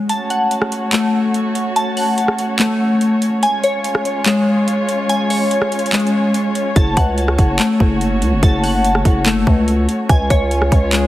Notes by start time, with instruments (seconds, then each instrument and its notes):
0.09 string section A3 C#4 F#4 C#5, synth keys A5, closed hi-hat
0.30 synth keys F#5, closed hi-hat
0.51 closed hi-hat
0.62 cross-stick
0.72 closed hi-hat
0.93 synth keys A3, clap, closed hi-hat
1.34 closed hi-hat
1.55 closed hi-hat
1.76 synth keys A5, closed hi-hat
1.97 synth keys F#5, open hi-hat
2.18 closed hi-hat
2.28 cross-stick
2.39 closed hi-hat
2.59 synth keys A3, clap, closed hi-hat
3.01 closed hi-hat
3.22 closed hi-hat
3.43 string section G#3 F4, synth keys G#5, closed hi-hat
3.64 synth keys C#5, closed hi-hat
3.84 closed hi-hat
3.95 cross-stick
4.05 closed hi-hat
4.26 synth keys G#3, clap, closed hi-hat
4.68 closed hi-hat
4.89 closed hi-hat
5.09 synth keys G#5, closed hi-hat
5.30 synth keys C#5, open hi-hat
5.51 closed hi-hat
5.62 cross-stick
5.72 closed hi-hat
5.79 closed hi-hat
5.86 closed hi-hat
5.93 synth keys G#3, clap, closed hi-hat
6.00 closed hi-hat
6.07 closed hi-hat
6.34 closed hi-hat
6.55 closed hi-hat
6.76 808-style bass F#1, string section A3 F#4, synth keys A5, kick, closed hi-hat
6.97 808-style bass C#2, synth keys F#5, kick, closed hi-hat
7.18 closed hi-hat
7.28 cross-stick
7.39 808-style bass F#1, kick, closed hi-hat
7.59 synth keys A3, clap, closed hi-hat
7.80 808-style bass F#1, kick
8.01 closed hi-hat
8.22 808-style bass C#2, closed hi-hat
8.32 808-style bass F#1
8.43 808-style bass F#1, synth keys A5, kick, closed hi-hat
8.63 synth keys F#5, open hi-hat
8.85 closed hi-hat
8.95 cross-stick
9.05 808-style bass F#1, kick, closed hi-hat
9.26 synth keys A3, clap, closed hi-hat
9.47 808-style bass C#2, kick
9.68 closed hi-hat
9.89 closed hi-hat
10.09 808-style bass C#2, string section G#3 C#4 F4 C#5, synth keys G#5, kick, closed hi-hat
10.30 808-style bass C#2, synth keys C#5, kick, closed hi-hat
10.51 closed hi-hat
10.62 cross-stick
10.72 808-style bass C#2, kick, closed hi-hat
10.93 synth keys G#3, clap, closed hi-hat